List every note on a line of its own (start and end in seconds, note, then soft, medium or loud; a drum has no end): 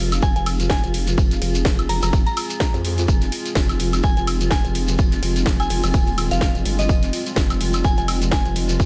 0.00 0.21 F1 loud
0.00 8.86 G#3 medium
0.00 8.86 C4 medium
0.00 8.86 F4 medium
0.00 6.88 G#4 medium
0.00 0.37 F5 medium
0.12 snare medium
0.12 closed hi-hat medium
0.12 high woodblock medium
0.12 shekere medium
0.22 0.34 F1 loud
0.22 0.31 G#5 medium
0.22 kick loud
0.22 tambourine medium
0.22 shekere medium
0.35 0.81 F1 medium
0.35 7.99 G#5 medium
0.35 0.43 G#5 medium
0.35 closed hi-hat soft
0.35 shekere soft
0.46 open hi-hat loud
0.46 ride medium
0.46 tambourine medium
0.46 high woodblock medium
0.60 closed hi-hat medium
0.60 shekere medium
0.70 0.86 G#5 medium
0.70 kick loud
0.70 snare loud
0.70 tambourine medium
0.84 1.16 F1 loud
0.84 closed hi-hat soft
0.84 shekere soft
0.94 open hi-hat medium
0.94 ride medium
0.94 tambourine medium
1.07 snare medium
1.07 closed hi-hat medium
1.07 shekere medium
1.18 1.40 F1 loud
1.18 kick loud
1.18 tambourine medium
1.18 shekere medium
1.31 snare medium
1.31 closed hi-hat medium
1.31 shekere soft
1.42 1.88 F1 loud
1.42 open hi-hat loud
1.42 ride medium
1.42 tambourine medium
1.55 closed hi-hat medium
1.55 shekere medium
1.65 kick loud
1.65 snare loud
1.65 tambourine medium
1.65 shekere medium
1.79 closed hi-hat medium
1.79 high woodblock medium
1.79 shekere soft
1.89 2.01 F1 loud
1.89 1.98 A#5 medium
1.89 open hi-hat loud
1.89 open hi-hat medium
1.89 ride medium
2.02 2.11 F1 loud
2.02 2.09 A#5 medium
2.02 snare soft
2.02 closed hi-hat medium
2.02 high woodblock medium
2.02 shekere medium
2.13 2.24 F1 loud
2.13 kick loud
2.13 tambourine medium
2.13 shekere medium
2.26 2.74 A#5 medium
2.26 closed hi-hat soft
2.26 shekere soft
2.37 open hi-hat loud
2.37 ride medium
2.37 tambourine medium
2.37 high woodblock medium
2.50 closed hi-hat medium
2.50 shekere medium
2.60 kick loud
2.60 snare loud
2.60 tambourine loud
2.60 shekere medium
2.74 3.07 F2 loud
2.74 closed hi-hat soft
2.74 shekere soft
2.85 open hi-hat loud
2.85 ride medium
2.85 tambourine medium
2.97 snare medium
2.97 closed hi-hat medium
2.97 shekere medium
3.08 3.30 F1 loud
3.08 kick loud
3.08 tambourine medium
3.08 shekere medium
3.21 snare medium
3.21 closed hi-hat medium
3.21 shekere soft
3.32 open hi-hat loud
3.32 ride medium
3.32 tambourine medium
3.46 closed hi-hat medium
3.46 shekere medium
3.55 4.02 F1 loud
3.55 kick loud
3.55 snare loud
3.55 tambourine medium
3.55 shekere medium
3.69 snare medium
3.69 closed hi-hat medium
3.69 high woodblock medium
3.69 shekere soft
3.79 open hi-hat loud
3.79 ride medium
3.79 tambourine medium
3.93 snare medium
3.93 closed hi-hat medium
3.93 high woodblock medium
3.93 shekere medium
4.03 4.15 F1 loud
4.03 4.12 G#5 medium
4.03 kick loud
4.03 tambourine medium
4.03 shekere medium
4.17 4.62 F1 loud
4.17 4.24 G#5 medium
4.17 closed hi-hat soft
4.17 shekere soft
4.27 open hi-hat loud
4.27 ride medium
4.27 tambourine medium
4.27 high woodblock medium
4.41 closed hi-hat medium
4.41 shekere medium
4.51 4.67 G#5 loud
4.51 kick loud
4.51 snare loud
4.51 tambourine medium
4.51 shekere medium
4.65 4.97 F1 loud
4.65 closed hi-hat soft
4.65 shekere soft
4.75 open hi-hat loud
4.75 ride medium
4.75 tambourine medium
4.88 snare soft
4.88 closed hi-hat medium
4.88 shekere medium
4.98 5.21 F1 loud
4.98 kick loud
4.98 tambourine medium
4.98 shekere medium
5.11 snare medium
5.11 closed hi-hat medium
5.11 shekere soft
5.23 5.69 F1 loud
5.23 open hi-hat loud
5.23 ride medium
5.23 tambourine medium
5.36 closed hi-hat medium
5.36 shekere medium
5.46 kick loud
5.46 snare loud
5.46 tambourine medium
5.46 shekere medium
5.60 6.26 G#5 medium
5.60 closed hi-hat soft
5.60 high woodblock medium
5.60 shekere soft
5.70 5.81 F1 loud
5.70 open hi-hat medium
5.70 open hi-hat loud
5.70 ride medium
5.84 5.92 F1 loud
5.84 snare soft
5.84 closed hi-hat medium
5.84 high woodblock medium
5.84 shekere medium
5.94 6.29 D#1 loud
5.94 kick loud
5.94 tambourine medium
5.94 shekere medium
6.07 closed hi-hat soft
6.07 shekere soft
6.18 open hi-hat loud
6.18 ride medium
6.18 tambourine medium
6.18 high woodblock medium
6.31 6.53 F1 medium
6.31 6.38 F5 medium
6.31 closed hi-hat medium
6.31 shekere medium
6.41 6.50 F5 medium
6.41 kick loud
6.41 snare loud
6.41 tambourine medium
6.41 shekere medium
6.55 6.64 F1 loud
6.55 closed hi-hat soft
6.55 shekere soft
6.65 6.88 G1 loud
6.65 open hi-hat loud
6.65 ride medium
6.65 tambourine medium
6.79 7.27 D#5 medium
6.79 snare medium
6.79 closed hi-hat medium
6.79 shekere medium
6.89 7.11 F1 loud
6.89 8.86 G3 medium
6.89 kick loud
6.89 tambourine loud
6.89 shekere medium
7.03 snare soft
7.03 closed hi-hat medium
7.03 shekere soft
7.13 open hi-hat loud
7.13 ride medium
7.13 tambourine medium
7.26 closed hi-hat medium
7.26 shekere medium
7.36 7.83 F1 loud
7.36 kick loud
7.36 snare loud
7.36 tambourine medium
7.36 shekere medium
7.50 snare medium
7.50 closed hi-hat medium
7.50 high woodblock medium
7.50 shekere soft
7.61 open hi-hat loud
7.61 ride medium
7.61 tambourine medium
7.73 snare medium
7.73 closed hi-hat medium
7.73 high woodblock medium
7.73 shekere medium
7.84 7.96 F1 loud
7.84 7.93 G#5 medium
7.84 kick loud
7.84 tambourine medium
7.84 shekere medium
7.97 8.43 F1 loud
7.97 8.86 F5 medium
7.97 8.05 G#5 medium
7.97 closed hi-hat soft
7.97 shekere soft
8.08 open hi-hat loud
8.08 ride medium
8.08 tambourine medium
8.08 high woodblock medium
8.22 closed hi-hat medium
8.22 shekere medium
8.31 8.48 G#5 medium
8.31 kick loud
8.31 snare loud
8.31 tambourine loud
8.31 shekere medium
8.45 8.78 F1 loud
8.45 closed hi-hat soft
8.45 shekere soft
8.56 open hi-hat loud
8.56 ride medium
8.56 tambourine medium
8.69 snare medium
8.69 closed hi-hat medium
8.69 shekere medium
8.80 8.86 F1 loud
8.80 kick loud
8.80 tambourine medium
8.80 shekere medium